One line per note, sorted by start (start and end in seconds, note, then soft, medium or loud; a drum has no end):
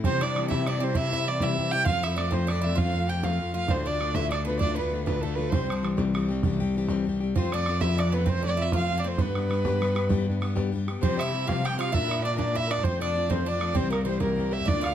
0.04 0.21 C3 medium
0.04 1.88 C3 medium
0.04 0.21 E3 medium
0.04 0.21 G3 medium
0.04 0.20 C4 medium
0.04 0.22 C4 medium
0.04 0.21 E4 loud
0.04 0.23 C5 medium
0.04 0.24 C5 loud
0.04 bodhran medium
0.21 0.36 C4 medium
0.21 0.48 D4 medium
0.21 0.35 E4 medium
0.21 0.51 D5 medium
0.21 0.49 D5 loud
0.21 bodhran medium
0.25 0.35 G3 medium
0.35 0.49 E3 medium
0.35 0.50 G3 medium
0.35 0.49 C4 medium
0.35 0.48 E4 medium
0.35 bodhran medium
0.48 0.67 C3 medium
0.48 0.65 E3 medium
0.48 0.66 G3 medium
0.48 0.67 C4 medium
0.48 0.64 E4 medium
0.48 0.66 E4 medium
0.48 0.61 E5 medium
0.48 0.70 E5 medium
0.48 bodhran medium
0.61 0.69 E5 medium
0.66 0.80 E3 medium
0.66 0.81 G3 medium
0.66 0.80 C4 medium
0.66 0.80 D4 medium
0.66 0.79 E4 medium
0.66 0.85 D5 medium
0.66 bodhran medium
0.80 0.94 G3 medium
0.80 0.94 C4 medium
0.80 0.94 E4 medium
0.80 0.98 C5 loud
0.80 0.98 C5 medium
0.94 1.11 C3 medium
0.94 1.11 E3 medium
0.94 1.12 G3 medium
0.94 1.12 C4 loud
0.94 1.10 E4 loud
0.94 1.09 E4 medium
0.94 1.28 E5 medium
0.94 1.29 E5 loud
0.94 bodhran medium
1.10 1.25 G3 soft
1.10 1.26 C4 medium
1.10 1.25 E4 medium
1.10 1.39 E4 medium
1.10 bodhran soft
1.26 1.40 E3 medium
1.26 1.41 G3 medium
1.26 1.41 C4 medium
1.26 1.41 D5 medium
1.26 1.44 D5 loud
1.40 1.59 C3 medium
1.40 1.56 E3 medium
1.40 1.57 G3 medium
1.40 1.58 C4 medium
1.40 1.58 E4 medium
1.40 1.72 E4 medium
1.40 1.73 E5 loud
1.40 1.46 G5 medium
1.40 bodhran medium
1.45 1.88 E5 medium
1.58 1.72 E3 medium
1.58 1.72 G3 medium
1.58 1.72 C4 medium
1.58 1.71 E4 medium
1.58 bodhran soft
1.71 1.87 C4 soft
1.71 1.86 E4 medium
1.71 1.85 G4 medium
1.71 1.86 G5 loud
1.76 1.87 G3 soft
1.85 3.70 F2 loud
1.85 2.03 F3 medium
1.85 2.03 A3 loud
1.85 2.04 C4 medium
1.85 2.01 F4 loud
1.85 2.02 F4 medium
1.85 2.05 F5 loud
1.85 2.02 F5 loud
1.85 bodhran medium
2.03 2.17 A3 soft
2.03 2.18 C4 medium
2.03 2.16 E4 medium
2.03 2.17 F4 medium
2.03 2.16 E5 medium
2.03 2.19 E5 loud
2.03 bodhran medium
2.16 2.31 F3 medium
2.16 2.32 A3 medium
2.16 2.32 C4 medium
2.16 2.31 D4 medium
2.16 2.31 F4 medium
2.16 2.31 D5 medium
2.16 2.34 D5 medium
2.16 bodhran medium
2.31 2.49 A3 medium
2.31 2.47 C4 medium
2.31 2.49 C4 medium
2.31 2.49 F4 medium
2.31 2.47 C5 medium
2.31 2.51 C5 loud
2.31 bodhran medium
2.35 2.47 F3 medium
2.47 2.63 F3 medium
2.47 2.64 A3 medium
2.47 2.61 D4 medium
2.47 2.79 D5 medium
2.47 2.65 D5 medium
2.47 bodhran medium
2.51 2.64 C4 medium
2.51 2.62 F4 medium
2.61 2.77 C4 medium
2.61 2.75 E4 medium
2.61 2.77 F4 medium
2.61 2.79 E5 medium
2.67 2.77 A3 soft
2.75 2.94 F3 medium
2.75 2.94 A3 medium
2.75 2.94 C4 medium
2.75 3.05 F4 medium
2.75 2.93 F4 medium
2.75 3.10 F5 medium
2.75 3.10 F5 loud
2.75 bodhran medium
2.94 3.08 A3 soft
2.94 3.09 C4 soft
2.94 3.08 F4 medium
2.94 bodhran soft
3.08 3.23 F3 medium
3.08 3.23 A3 medium
3.08 3.23 C4 medium
3.08 3.22 F4 medium
3.08 3.22 G4 medium
3.08 3.24 G5 medium
3.08 3.26 G5 medium
3.23 3.38 F3 medium
3.23 3.40 A3 medium
3.23 3.40 C4 medium
3.23 3.40 F4 medium
3.23 3.52 F4 medium
3.23 3.54 F5 medium
3.23 3.55 F5 medium
3.23 bodhran medium
3.40 3.54 F3 medium
3.40 3.55 A3 medium
3.40 3.55 C4 medium
3.40 3.53 F4 medium
3.40 bodhran soft
3.54 3.68 A3 soft
3.54 3.69 C4 soft
3.54 3.68 F4 medium
3.54 3.71 F5 medium
3.54 3.71 F5 loud
3.68 3.85 D2 medium
3.68 5.53 D2 medium
3.68 3.85 A2 medium
3.68 3.85 D3 medium
3.68 3.86 A3 medium
3.68 3.84 C4 medium
3.68 3.86 D4 medium
3.68 3.85 F4 medium
3.68 3.86 C5 medium
3.68 3.88 C5 medium
3.68 bodhran medium
3.86 3.99 D3 soft
3.86 4.00 A3 soft
3.86 4.12 D4 medium
3.86 4.01 D4 soft
3.86 4.00 F4 medium
3.86 4.16 D5 medium
3.86 4.17 D5 medium
4.00 4.14 D3 medium
4.00 4.15 A3 medium
4.00 4.14 D4 medium
4.00 4.14 F4 medium
4.00 bodhran medium
4.14 4.33 D2 medium
4.14 4.32 A2 medium
4.14 4.30 D3 medium
4.14 4.32 A3 medium
4.14 4.32 D4 medium
4.14 4.30 E4 medium
4.14 4.32 F4 medium
4.14 4.30 E5 medium
4.14 4.34 E5 medium
4.14 bodhran medium
4.31 4.46 D3 medium
4.31 4.46 A3 medium
4.31 4.44 D4 medium
4.31 4.47 D4 medium
4.31 4.44 D5 medium
4.31 4.46 D5 medium
4.31 bodhran medium
4.35 4.45 F4 medium
4.45 4.61 A3 medium
4.45 4.59 B3 medium
4.45 4.61 D4 medium
4.45 4.61 F4 medium
4.45 4.62 B4 medium
4.45 4.58 B4 medium
4.50 4.61 D3 soft
4.59 4.78 D2 medium
4.59 4.78 A2 medium
4.59 4.78 D3 medium
4.59 4.78 A3 medium
4.59 4.75 D4 medium
4.59 4.77 D4 medium
4.59 4.75 D5 loud
4.59 4.77 D5 medium
4.59 bodhran medium
4.63 4.76 F4 medium
4.76 5.03 B3 medium
4.76 4.92 D4 medium
4.76 4.92 F4 medium
4.76 5.04 B4 medium
4.76 bodhran soft
4.80 4.90 D3 soft
4.80 4.92 A3 soft
4.92 5.06 D3 medium
4.92 5.06 A3 medium
4.92 5.06 D4 medium
4.92 5.06 F4 medium
5.04 5.24 A2 medium
5.04 5.23 D3 medium
5.04 5.24 A3 medium
5.04 5.22 B3 medium
5.04 5.24 D4 medium
5.04 5.23 F4 medium
5.04 5.23 B4 medium
5.04 5.24 B4 medium
5.04 bodhran medium
5.09 5.24 D2 soft
5.21 5.38 D3 medium
5.21 5.50 A3 medium
5.21 5.37 A4 medium
5.21 bodhran soft
5.26 5.38 A3 medium
5.26 5.37 D4 medium
5.26 5.36 F4 medium
5.35 5.53 D4 soft
5.35 5.52 F4 medium
5.35 5.51 B4 medium
5.39 5.53 D3 medium
5.39 5.53 A3 soft
5.49 7.38 C2 medium
5.49 5.69 C3 medium
5.49 5.69 E3 medium
5.49 5.73 C4 medium
5.49 5.86 C5 medium
5.49 bodhran loud
5.54 5.70 G3 medium
5.54 5.69 C4 medium
5.54 5.67 G4 medium
5.54 5.85 C5 medium
5.69 5.83 G3 soft
5.69 5.84 C4 soft
5.69 5.86 D4 medium
5.69 5.83 G4 medium
5.69 bodhran medium
5.83 5.98 E3 medium
5.83 5.97 G3 medium
5.83 5.96 C4 medium
5.83 5.96 G4 medium
5.83 bodhran medium
5.97 6.16 C3 medium
5.97 6.13 E3 medium
5.97 6.14 G3 medium
5.97 6.15 C4 medium
5.97 6.14 G4 medium
5.97 bodhran medium
6.14 6.29 E3 medium
6.14 6.29 G3 medium
6.14 6.29 C4 medium
6.14 6.27 G4 medium
6.14 bodhran medium
6.29 6.43 G3 medium
6.29 6.44 C4 medium
6.29 6.43 G4 medium
6.43 6.60 C3 medium
6.43 6.61 E3 medium
6.43 6.61 G3 medium
6.43 6.61 C4 medium
6.43 6.59 G4 loud
6.43 bodhran medium
6.60 6.75 G3 medium
6.60 6.76 C4 medium
6.60 6.75 G4 medium
6.60 bodhran soft
6.74 6.89 E3 medium
6.74 6.89 G3 medium
6.74 6.88 C4 medium
6.74 6.88 G4 medium
6.88 7.07 C3 medium
6.88 7.04 E3 medium
6.88 7.05 G3 medium
6.88 7.07 C4 medium
6.88 7.06 G4 medium
6.88 bodhran medium
7.05 7.20 E3 medium
7.05 7.21 G3 medium
7.05 7.21 C4 medium
7.05 7.19 G4 medium
7.05 bodhran soft
7.20 7.35 G3 medium
7.20 7.34 C4 medium
7.20 7.35 G4 medium
7.35 9.20 F2 loud
7.35 7.52 F3 medium
7.35 7.52 A3 medium
7.35 7.53 C4 medium
7.35 7.52 C4 medium
7.35 7.50 F4 loud
7.35 7.55 C5 medium
7.35 7.54 C5 medium
7.35 bodhran medium
7.52 7.67 A3 medium
7.52 7.67 C4 soft
7.52 7.80 D4 medium
7.52 7.66 F4 medium
7.52 7.82 D5 loud
7.52 7.80 D5 medium
7.52 bodhran medium
7.66 7.81 F3 medium
7.66 7.81 A3 medium
7.66 7.82 C4 medium
7.66 7.80 F4 medium
7.66 bodhran medium
7.80 7.95 F3 medium
7.80 7.98 A3 medium
7.80 7.97 C4 medium
7.80 7.97 E4 medium
7.80 7.98 F4 medium
7.80 7.99 E5 loud
7.80 8.01 E5 loud
7.80 bodhran medium
7.97 8.12 F3 medium
7.97 8.13 A3 medium
7.97 8.13 C4 medium
7.97 8.12 D4 medium
7.97 8.12 F4 medium
7.97 8.14 D5 medium
7.97 8.15 D5 medium
7.97 bodhran medium
8.12 8.28 A3 medium
8.12 8.25 B3 medium
8.12 8.28 F4 medium
8.12 8.29 B4 medium
8.12 8.30 B4 loud
8.17 8.27 C4 medium
8.26 8.44 F3 medium
8.26 8.45 A3 loud
8.26 8.42 C4 medium
8.26 8.45 C4 medium
8.26 8.44 F4 medium
8.26 8.46 C5 medium
8.26 8.45 C5 loud
8.26 bodhran medium
8.43 8.57 D4 medium
8.43 8.59 F4 medium
8.43 8.58 D5 medium
8.43 8.63 D5 medium
8.43 bodhran soft
8.47 8.60 A3 medium
8.47 8.58 C4 medium
8.57 8.73 F3 medium
8.57 8.73 A3 medium
8.57 8.74 C4 medium
8.57 8.73 E4 medium
8.57 8.72 E5 medium
8.62 8.72 F4 medium
8.62 8.74 E5 medium
8.72 8.89 F3 medium
8.72 8.90 A3 medium
8.72 8.91 C4 medium
8.72 8.97 F4 medium
8.72 8.90 F4 medium
8.72 9.02 F5 medium
8.72 9.01 F5 loud
8.72 bodhran medium
8.90 9.05 F3 medium
8.90 9.05 A3 medium
8.90 9.05 C4 medium
8.90 9.03 F4 medium
8.90 bodhran soft
8.98 9.04 D4 medium
8.98 9.10 D5 medium
9.04 9.19 A3 soft
9.04 9.18 C4 medium
9.04 9.18 C4 soft
9.04 9.19 F4 soft
9.04 9.17 C5 medium
9.08 9.22 C5 loud
9.17 10.98 G2 medium
9.17 9.35 G3 medium
9.17 10.69 B3 medium
9.17 9.36 B3 medium
9.17 9.36 D4 medium
9.17 9.34 G4 medium
9.17 10.68 B4 medium
9.17 10.74 B4 loud
9.17 bodhran medium
9.35 9.50 B3 soft
9.35 9.51 D4 medium
9.35 9.50 G4 medium
9.35 bodhran medium
9.50 9.64 G3 medium
9.50 9.65 B3 medium
9.50 9.64 D4 medium
9.50 9.64 G4 medium
9.50 bodhran medium
9.65 9.80 G3 medium
9.65 9.82 B3 medium
9.65 9.82 D4 medium
9.65 9.82 G4 medium
9.65 bodhran medium
9.82 9.96 G3 medium
9.82 9.97 B3 medium
9.82 9.96 D4 medium
9.82 9.94 G4 medium
9.82 bodhran medium
9.95 10.09 B3 medium
9.95 10.10 D4 medium
9.95 10.10 G4 medium
9.95 bodhran medium
10.09 10.27 G3 medium
10.09 10.27 B3 medium
10.09 10.28 D4 loud
10.09 10.26 G4 medium
10.09 bodhran medium
10.27 10.41 B3 soft
10.27 10.42 D4 medium
10.27 10.42 G4 medium
10.27 bodhran soft
10.41 10.56 G3 medium
10.41 10.56 B3 medium
10.41 10.55 D4 medium
10.41 10.54 G4 medium
10.41 bodhran medium
10.56 10.71 G3 medium
10.56 10.72 B3 medium
10.56 10.73 D4 medium
10.56 10.73 G4 medium
10.56 bodhran medium
10.72 10.87 G3 medium
10.72 10.88 B3 medium
10.72 10.88 D4 medium
10.72 10.87 G4 medium
10.72 bodhran soft
10.88 11.03 B3 soft
10.88 11.03 D4 medium
10.88 11.02 G4 medium
10.88 bodhran medium
11.01 11.94 C3 medium
11.01 11.19 C3 medium
11.01 11.19 F3 medium
11.01 11.19 G3 medium
11.01 11.20 C4 medium
11.01 11.18 C4 medium
11.01 11.16 G4 medium
11.01 11.20 C5 loud
11.01 11.19 C5 loud
11.01 bodhran medium
11.17 11.32 G3 soft
11.17 11.33 C4 medium
11.17 11.47 E4 medium
11.17 11.32 G4 medium
11.17 11.47 E5 medium
11.17 11.49 E5 medium
11.17 bodhran medium
11.32 11.47 F3 medium
11.32 11.46 G3 medium
11.32 11.46 C4 medium
11.32 11.45 G4 medium
11.46 11.65 C3 medium
11.46 11.61 F3 medium
11.46 11.63 G3 medium
11.46 11.64 C4 medium
11.46 11.63 F4 medium
11.46 11.64 G4 medium
11.46 11.67 F5 loud
11.46 11.66 F5 medium
11.46 bodhran medium
11.63 11.78 F3 medium
11.63 11.79 G3 medium
11.63 11.77 C4 medium
11.63 11.78 G4 medium
11.63 11.75 G4 medium
11.63 11.77 G5 medium
11.63 11.79 G5 loud
11.63 bodhran medium
11.77 11.92 G3 medium
11.77 11.93 C4 medium
11.77 11.92 F4 loud
11.77 11.92 G4 medium
11.77 11.92 F5 medium
11.77 11.95 F5 medium
11.81 bodhran medium
11.92 12.85 A#2 medium
11.92 12.09 A#3 medium
11.92 12.10 D4 medium
11.92 12.25 E4 loud
11.92 12.08 F4 medium
11.92 12.06 A#4 medium
11.92 12.23 E5 loud
11.92 12.23 E5 medium
11.92 bodhran medium
12.08 12.22 D4 medium
12.08 12.23 F4 soft
12.08 12.23 A#4 soft
12.08 bodhran medium
12.22 12.37 A#3 medium
12.22 12.37 D4 medium
12.22 12.36 F4 medium
12.22 12.35 A#4 medium
12.22 12.37 D5 medium
12.22 12.38 D5 medium
12.36 12.54 A#3 medium
12.36 12.55 D4 medium
12.36 12.55 F4 medium
12.36 12.54 A#4 medium
12.36 12.57 D5 medium
12.36 12.59 D5 medium
12.36 bodhran medium
12.55 12.70 A#3 medium
12.55 12.70 D4 medium
12.55 12.70 E4 medium
12.55 12.68 F4 medium
12.55 12.66 A#4 medium
12.55 12.72 E5 loud
12.55 12.73 E5 medium
12.55 bodhran soft
12.68 12.84 D4 medium
12.68 12.84 F4 soft
12.68 12.83 A#4 medium
12.68 12.85 D5 medium
12.68 12.87 D5 medium
12.68 bodhran medium
12.78 bodhran soft
12.83 13.76 F2 medium
12.83 13.01 F3 medium
12.83 13.01 A3 medium
12.83 13.01 C4 medium
12.83 13.00 C4 medium
12.83 12.99 F4 loud
12.83 13.01 C5 loud
12.83 13.02 C5 loud
12.83 bodhran medium
13.00 13.16 A3 medium
13.00 13.14 C4 medium
13.00 13.31 D4 medium
13.00 13.15 F4 medium
13.00 13.30 D5 loud
13.00 13.32 D5 medium
13.00 bodhran medium
13.14 13.29 F3 medium
13.14 13.29 A3 medium
13.14 13.30 C4 medium
13.14 13.29 F4 medium
13.30 13.44 F3 medium
13.30 13.46 A3 medium
13.30 13.45 C4 medium
13.30 13.47 F4 medium
13.30 13.48 C5 medium
13.30 13.49 C5 medium
13.30 bodhran medium
13.46 13.61 F3 medium
13.46 13.61 A3 medium
13.46 13.61 C4 medium
13.46 13.73 D4 medium
13.46 13.59 F4 medium
13.46 13.77 D5 medium
13.46 13.78 D5 medium
13.60 13.76 A3 medium
13.60 13.75 C4 medium
13.60 13.75 F4 medium
13.60 bodhran medium
13.74 14.68 C2 medium
13.74 13.92 C3 medium
13.74 13.92 E3 medium
13.74 13.92 G3 medium
13.74 13.90 C4 medium
13.74 13.91 C4 loud
13.74 13.90 G4 medium
13.74 13.90 C5 medium
13.74 13.91 C5 loud
13.74 bodhran medium
13.90 14.05 G3 soft
13.90 14.05 A#3 medium
13.90 14.07 C4 soft
13.90 14.06 G4 medium
13.90 14.05 A#4 medium
13.90 14.02 A#4 medium
13.90 bodhran medium
14.02 14.21 E3 medium
14.02 14.19 C4 medium
14.02 14.08 A#4 medium
14.02 14.21 C5 medium
14.06 14.20 G3 medium
14.06 14.20 C4 medium
14.06 14.19 G4 medium
14.06 14.21 C5 medium
14.20 14.39 C3 medium
14.20 14.35 E3 medium
14.20 14.36 G3 medium
14.20 14.63 A#3 medium
14.20 14.38 C4 medium
14.20 14.38 G4 medium
14.20 14.54 A#4 medium
14.20 bodhran medium
14.36 14.51 E3 medium
14.36 14.52 G3 medium
14.36 14.52 C4 medium
14.36 14.50 G4 medium
14.36 bodhran soft
14.51 14.68 G3 medium
14.51 14.67 C4 medium
14.51 14.66 G4 medium
14.51 14.69 E5 loud
14.51 14.68 E5 medium
14.60 bodhran soft
14.65 14.95 D2 medium
14.65 14.84 D3 medium
14.65 14.84 A#3 medium
14.65 14.81 D4 medium
14.65 14.83 D4 loud
14.65 14.85 D5 loud
14.65 14.87 D5 loud
14.65 bodhran medium
14.70 14.81 F4 medium
14.81 14.95 D4 medium
14.81 14.95 F4 medium
14.81 14.95 F5 medium
14.81 14.95 F5 loud
14.81 bodhran medium
14.86 14.95 A#3 soft